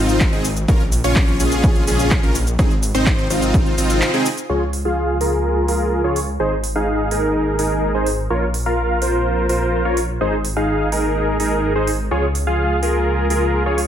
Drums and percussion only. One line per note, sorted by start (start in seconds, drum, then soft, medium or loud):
0.09 closed hi-hat medium
0.09 shaker soft
0.21 kick loud
0.21 clap loud
0.21 closed hi-hat medium
0.21 shaker soft
0.33 closed hi-hat soft
0.45 open hi-hat loud
0.45 shaker medium
0.57 closed hi-hat medium
0.57 shaker soft
0.68 kick loud
0.68 closed hi-hat medium
0.68 shaker soft
0.80 closed hi-hat soft
0.92 open hi-hat loud
0.92 shaker medium
1.04 closed hi-hat medium
1.04 shaker medium
1.16 kick loud
1.16 clap loud
1.16 closed hi-hat medium
1.16 shaker soft
1.28 closed hi-hat soft
1.40 open hi-hat loud
1.40 shaker medium
1.52 closed hi-hat medium
1.52 shaker soft
1.64 kick loud
1.64 closed hi-hat medium
1.64 shaker soft
1.76 closed hi-hat soft
1.87 open hi-hat loud
1.87 shaker medium
1.99 closed hi-hat medium
1.99 shaker soft
2.11 kick loud
2.11 clap loud
2.11 closed hi-hat medium
2.11 shaker soft
2.23 closed hi-hat soft
2.35 open hi-hat loud
2.35 shaker medium
2.47 closed hi-hat medium
2.47 shaker medium
2.59 kick loud
2.59 cross-stick medium
2.59 closed hi-hat medium
2.59 shaker soft
2.71 closed hi-hat soft
2.83 open hi-hat loud
2.83 shaker medium
2.95 cross-stick medium
2.95 closed hi-hat medium
2.95 shaker soft
3.06 kick loud
3.06 clap loud
3.06 closed hi-hat medium
3.06 shaker soft
3.18 closed hi-hat soft
3.30 cross-stick medium
3.30 open hi-hat loud
3.30 shaker medium
3.42 closed hi-hat medium
3.42 shaker soft
3.54 kick loud
3.54 closed hi-hat medium
3.54 shaker soft
3.66 closed hi-hat soft
3.78 open hi-hat loud
3.78 shaker medium
3.90 closed hi-hat medium
3.90 shaker soft
4.02 clap loud
4.02 closed hi-hat medium
4.02 shaker soft
4.14 closed hi-hat soft
4.26 open hi-hat loud
4.26 shaker medium
4.38 closed hi-hat medium
4.38 shaker soft
4.73 open hi-hat medium
5.21 open hi-hat medium
5.68 open hi-hat medium
6.16 open hi-hat loud
6.64 open hi-hat loud
7.11 open hi-hat medium
7.59 open hi-hat loud
8.06 open hi-hat medium
8.54 open hi-hat loud
9.02 open hi-hat medium
9.49 open hi-hat medium
9.97 open hi-hat medium
10.45 open hi-hat loud
10.92 open hi-hat loud
11.40 open hi-hat medium
11.87 open hi-hat loud
12.35 open hi-hat loud
12.83 open hi-hat medium
13.30 open hi-hat medium
13.78 open hi-hat medium